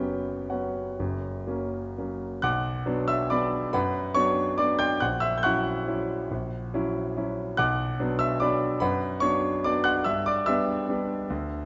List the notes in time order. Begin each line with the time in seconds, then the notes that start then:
Already playing: F#1 F#2 F#3 G4 C#5 G5
0.00 B3 C#4
0.50 F#3 B3 C#4 F#4 C#5 F#5
0.99 F#1 F#2
1.47 F#3 A#3 C#4
1.98 F#3 A#3 C#4
2.42 B1 F#5 D6 F#6
2.86 F#3 B3 D4
3.08 E5 E6
3.30 F#3 B3 D4 D5 B5 D6
3.73 F#2 B4 F#5 B5
4.14 F#3 B3 D4 C#5 C#6
4.58 F#3 B3 D4 D5 D6
4.79 G5 G6
5.00 A#1 F#5 F#6
5.20 E5 E6
5.38 G6
5.43 F#3 C#4 E4 F#5 C#6 F#6
5.88 F#3 C#4 E4
6.31 A#1
6.74 F#3 C#4 E4
7.17 F#3 C#4 E4
7.57 B1 F#5 D6 F#6
8.00 F#3 B3 D4
8.19 E5 E6
8.40 F#3 B3 D4 D5 B5 D6
8.80 F#2 B4 F#5 B5
9.20 F#3 B3 D4 C#5 C#6
9.64 F#3 B3 D4 D5 D6
9.84 F#5 F#6
10.04 G2 E5 E6
10.26 D5 D6
10.46 G3 B3 D4 E5 E6
10.89 G3 B3 D4
11.30 D2